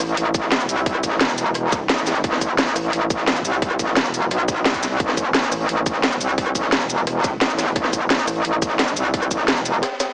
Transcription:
Already playing: wobble bass A1
0.00 cross-stick, closed hi-hat, cabasa
0.09 closed hi-hat
0.17 wobble bass A1, closed hi-hat
0.34 kick, closed hi-hat, cabasa
0.43 snare
0.52 snare, closed hi-hat
0.60 cabasa
0.68 wobble bass C2, closed hi-hat, cabasa
0.78 closed hi-hat
0.86 kick, closed hi-hat
0.95 cross-stick
1.03 wobble bass A1, kick, closed hi-hat, cabasa
1.12 snare
1.21 wobble bass E1, snare, closed hi-hat
1.29 snare, cabasa
1.38 closed hi-hat, cabasa
1.54 wobble bass E1, cross-stick, closed hi-hat
1.72 kick, snare, closed hi-hat, cabasa
1.89 wobble bass A1, snare, closed hi-hat
1.98 cabasa
2.06 snare, closed hi-hat, cabasa
2.15 closed hi-hat
2.24 wobble bass A1, kick, closed hi-hat
2.33 cross-stick, snare
2.41 kick, closed hi-hat, cabasa
2.58 wobble bass A1, snare, closed hi-hat
2.67 snare, cabasa
2.76 cross-stick, closed hi-hat, open hi-hat, cabasa
2.84 closed hi-hat
2.93 wobble bass A1, closed hi-hat
3.10 kick, closed hi-hat, cabasa
3.19 snare
3.28 snare, closed hi-hat
3.36 cabasa
3.45 wobble bass C2, closed hi-hat, cabasa
3.53 closed hi-hat
3.62 kick, closed hi-hat
3.71 cross-stick
3.79 wobble bass A1, kick, closed hi-hat, cabasa
3.88 snare
3.96 wobble bass E1, snare, closed hi-hat
4.05 snare, cabasa
4.14 closed hi-hat, cabasa
4.31 wobble bass B1, cross-stick, closed hi-hat
4.48 kick, snare, closed hi-hat, cabasa
4.65 wobble bass C2, snare, closed hi-hat
4.74 kick, cabasa
4.83 snare, closed hi-hat, cabasa
4.91 closed hi-hat
5.00 wobble bass A1, kick, closed hi-hat
5.09 cross-stick, snare
5.17 kick, closed hi-hat, cabasa
5.34 wobble bass A1, snare, closed hi-hat
5.43 snare, cabasa
5.52 cross-stick, closed hi-hat, open hi-hat, cabasa
5.60 closed hi-hat
5.69 wobble bass A1, closed hi-hat
5.86 kick, closed hi-hat, cabasa
5.94 snare
6.03 snare, closed hi-hat
6.12 cabasa
6.21 wobble bass C2, closed hi-hat, cabasa
6.29 closed hi-hat
6.38 kick, closed hi-hat
6.47 cross-stick
6.55 wobble bass A1, kick, closed hi-hat, cabasa
6.63 snare
6.72 wobble bass E1, snare, closed hi-hat
6.81 snare, cabasa
6.89 closed hi-hat, cabasa
7.07 wobble bass E1, cross-stick, closed hi-hat
7.24 kick, snare, closed hi-hat, cabasa
7.41 wobble bass A1, snare, closed hi-hat
7.50 cabasa
7.58 snare, closed hi-hat, cabasa
7.68 closed hi-hat
7.75 wobble bass A1, kick, closed hi-hat
7.84 cross-stick, snare
7.93 kick, closed hi-hat, cabasa
8.10 wobble bass A1, snare, closed hi-hat
8.19 snare, cabasa
8.27 cross-stick, closed hi-hat, open hi-hat, cabasa
8.36 closed hi-hat
8.44 wobble bass A1, closed hi-hat
8.62 kick, closed hi-hat, cabasa
8.70 snare
8.79 snare, closed hi-hat
8.88 cabasa
8.97 wobble bass C2, closed hi-hat, cabasa
9.06 closed hi-hat
9.14 kick, closed hi-hat
9.22 cross-stick, cabasa
9.31 wobble bass A1, kick, closed hi-hat, cabasa
9.39 snare
9.48 wobble bass E1, snare, closed hi-hat
9.57 snare, cabasa
9.65 closed hi-hat, cabasa
9.82 cross-stick, snare, closed hi-hat
9.92 snare
10.00 snare, closed hi-hat, cabasa
10.08 snare

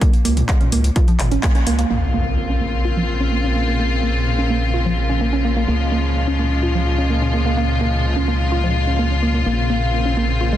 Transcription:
0.01 synth pluck A#3, kick, closed hi-hat
0.13 closed hi-hat
0.25 analog synth bass C#2, synth pluck A#3, open hi-hat
0.37 closed hi-hat, mid tom
0.49 kick, clap, closed hi-hat
0.61 synth pluck C#4, closed hi-hat, mid tom
0.72 analog synth bass C#2, synth pluck A#3, open hi-hat
0.84 closed hi-hat
0.96 synth pluck F4, kick, closed hi-hat
1.08 synth pluck F3, closed hi-hat
1.19 analog synth bass G#1, clap, mid tom, open hi-hat
1.31 synth pluck C#4, closed hi-hat
1.43 synth pluck A#3, kick, clap, closed hi-hat
1.55 synth pluck C#4, closed hi-hat
1.67 analog synth bass C#2, synth pluck A#3, open hi-hat
1.79 synth pluck A#3, closed hi-hat
1.90 analog synth bass A#1, synth drone A#2, string section C#3 A#3 C4 F4, synth pluck A#3, impact
2.14 synth pluck A#3
2.50 synth pluck C#4
2.61 synth pluck A#3
2.85 synth pluck F4
2.97 synth pluck F3
3.20 synth pluck C#4
3.32 synth pluck A#3
3.44 synth pluck C#4
3.56 synth pluck A#3
3.68 synth pluck A#3
3.79 synth pluck A#3
4.03 synth pluck A#3
4.39 synth pluck C#4
4.50 synth pluck A#3
4.74 synth pluck F4
4.86 synth pluck F3
5.09 synth pluck C#4
5.21 synth pluck A#3
5.33 synth pluck C#4
5.45 synth pluck A#3
5.57 synth pluck A#3
5.68 analog synth bass C#2, string section F3 G#3 F4, synth pluck A#3
5.92 synth pluck A#3
6.27 synth pluck C#4
6.39 synth pluck A#3
6.63 synth pluck F4
6.75 synth pluck F3
6.98 synth pluck C#4
7.10 synth pluck A#3
7.22 synth pluck C#4
7.34 synth pluck A#3
7.46 synth pluck A#3
7.57 synth pluck A#3
7.81 synth pluck A#3
8.16 synth pluck C#4
8.28 synth pluck A#3
8.52 synth pluck F4
8.64 synth pluck F3
8.87 synth pluck C#4
8.99 synth pluck A#3
9.11 synth pluck C#4
9.23 synth pluck A#3
9.34 synth pluck A#3
9.46 analog synth bass A#1, string section C#3 A#3 C4, synth pluck A#3
9.70 synth pluck A#3
10.05 synth pluck C#4
10.17 synth pluck A#3
10.41 synth pluck F4
10.53 synth pluck G#3

